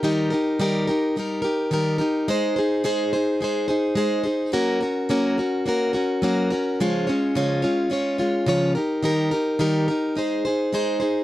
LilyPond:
\new Staff \with { instrumentName = "Steel-string acoustic guitar" } { \time 4/4 \key aes \major \tempo 4 = 107 <ees g ees' g' bes'>8 <ees' g' bes'>8 <ees g ees' g' bes'>8 <ees' g' bes'>8 <g ees' g' bes'>8 <ees' g' bes'>8 <ees g ees' g' bes'>8 <ees' g' bes'>8 | <aes ees' aes' c''>8 <ees' aes' c''>8 <aes ees' aes' c''>8 <ees' aes' c''>8 <aes ees' aes' c''>8 <ees' aes' c''>8 <aes ees' aes' c''>8 <ees' aes' c''>8 | <ges bes des' ges' bes'>8 <des' ges' bes'>8 <ges bes des' ges' bes'>8 <des' ges' bes'>8 <bes des' ges' bes'>8 <des' ges' bes'>8 <ges bes des' ges' bes'>8 <des' ges' bes'>8 | <des f aes des' f' des''>8 <aes des' f' des''>8 <des f aes des' f' des''>8 <aes des' f' des''>8 <aes des' f' des''>8 <aes des' f' des''>8 <des f aes des' f' des''>8 <ees' g' bes'>8 |
<ees g ees' g' bes'>8 <ees' g' bes'>8 <ees g ees' g' bes'>8 <ees' g' bes'>8 <aes ees' aes' c''>8 <ees' aes' c''>8 <aes ees' aes' c''>8 <ees' aes' c''>8 | }